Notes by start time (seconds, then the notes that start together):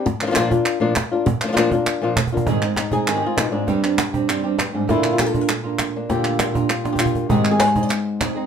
0.06 muted nylon-string guitar stroke, cajon bass, cajon slap
0.21 F3 A#3 D4 F4, clap
0.26 F3 A#3 D4 F4
0.31 F3 A#3 D4 F4
0.35 A#2 F3 A#3 D4 F4, cajon slap, clap
0.51 A#3 D4 F4, cajon bass
0.66 clap
0.80 A#2 F3 A#3 D4 F4
0.96 muted nylon-string guitar stroke, cajon bass, cajon slap, clap
1.12 A#3 D4 F4
1.26 muted nylon-string guitar stroke, cajon bass
1.41 F3 A#3 D4 F4, clap
1.47 F3 A#3 D4 F4
1.52 F3 A#3 D4 F4
1.56 A#2 F3 A#3 D4 F4, cajon slap, clap
1.71 A#3 D4 F4, cajon bass
1.86 cajon slap, clap
2.02 A#2 F3 A#3 D4 F4
2.17 muted nylon-string guitar stroke, cajon bass, clap
2.27 cajon bass
2.32 A#3 D4 F4
2.37 cajon bass
2.46 G#2 D#3 G#3 C4 D#4 G#4, cajon bass
2.62 G#3 C4 D#4 G#4, cajon slap, clap
2.76 D#4, muted nylon-string guitar stroke, cajon slap, clap
2.91 G#3 C4 D#4 G#4, cajon bass
3.07 G#2 D#3 G#3 C4 D#4 G#4, clap
3.17 G4
3.22 G#3 C4 D#4 G#4
3.26 F4
3.36 B2 D#4, muted nylon-string guitar stroke, cajon slap, clap
3.52 G#2 G#3 C4 D4 D#4 G#4
3.67 G2 C3 G3 C4 D4 G4, cajon bass, cajon slap
3.83 G3 C4 D4 G4, clap
3.98 muted nylon-string guitar stroke, cajon slap, clap
4.13 G3 C4 D4 G4, cajon bass
4.28 G2 C3 G3 C4 D4 G4, clap
4.43 G3 C4 D4 G4
4.58 G2, muted nylon-string guitar stroke, cajon slap, clap
4.73 G#2 G3 C4 D4 G4
4.88 A#2 D3 A#3 D4 E4 F4, cajon bass, cajon slap
5.04 cajon slap, clap
5.13 F4
5.19 D3 A#3 D4 F4 G4, cajon slap, clap
5.26 A4
5.33 A#3 D4 F4, cajon bass
5.41 A#4
5.48 A4, muted nylon-string guitar stroke, clap
5.64 A#3 D4 F4
5.79 cajon slap, clap
5.96 A#3 D4
6.09 A#2 D3 A#3 D4 F4 G4, cajon bass, cajon slap
6.24 cajon slap, clap
6.39 D3 A#3 D4 F4, cajon slap, clap
6.54 A#3 D4 F4, cajon bass
6.69 F4, muted nylon-string guitar stroke, clap
6.84 A#3 D4 F4, cajon slap
6.92 G4, cajon bass
6.99 F4, clap
7.06 cajon bass
7.15 A#3, cajon bass
7.29 G#2 D#3 G#3 C4 D#4 G4 G#4, cajon bass
7.45 clap
7.51 G#4
7.60 G#3 C4 D#4 G#4 B4, cajon slap, clap
7.67 C5
7.75 G#3 C4 D#4 G#4, cajon bass
7.83 D5
7.89 C5, muted nylon-string guitar stroke, cajon slap, clap
8.20 G#3 C4 D#4 G#4, cajon bass, cajon slap, clap
8.35 G#3 C4 D#4 G#4